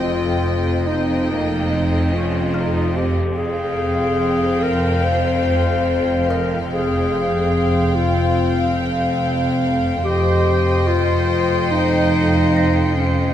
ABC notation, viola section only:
X:1
M:4/4
L:1/8
Q:1/4=72
K:Fm
V:1 name="Viola section"
C2 C B, C D E C | C8 | C8 | c8 |]